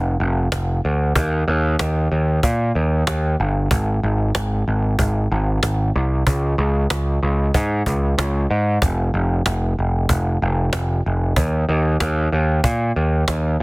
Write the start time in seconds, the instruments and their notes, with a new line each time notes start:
Already playing: picked electric bass F1
0.20 picked electric bass F1
0.52 picked electric bass F1, cajon slap
0.85 picked electric bass D2
1.16 picked electric bass D#2, cajon bass
1.48 picked electric bass D#2
1.79 picked electric bass D#2, cajon slap
2.12 picked electric bass D#2
2.43 picked electric bass A#2, cajon bass
2.75 picked electric bass D#2
3.07 picked electric bass D#2, cajon slap
3.40 picked electric bass G1
3.71 picked electric bass G#1, cajon bass
4.03 picked electric bass G#1
4.35 picked electric bass G#1, cajon slap
4.68 picked electric bass G#1
4.99 picked electric bass G#1, cajon bass
5.31 picked electric bass G#1
5.63 picked electric bass G#1, cajon slap
5.96 picked electric bass C2
6.27 picked electric bass C#2, cajon bass
6.58 picked electric bass C#2
6.90 picked electric bass C#2, cajon slap
7.23 picked electric bass C#2
7.54 picked electric bass G#2, cajon bass
7.86 picked electric bass C#2, cajon bass
8.18 picked electric bass C#2, cajon slap
8.50 picked electric bass G#2
8.82 picked electric bass F1, cajon bass
9.14 picked electric bass F1
9.46 picked electric bass F1, cajon slap
9.79 picked electric bass F1
10.09 picked electric bass F1, cajon bass
10.42 picked electric bass F1
10.73 picked electric bass F1, cajon slap
11.06 picked electric bass F1
11.36 picked electric bass D#2, cajon bass
11.69 picked electric bass D#2
12.00 picked electric bass D#2, cajon slap
12.32 picked electric bass D#2
12.64 picked electric bass A#2, cajon bass
12.96 picked electric bass D#2
13.28 picked electric bass D#2, cajon slap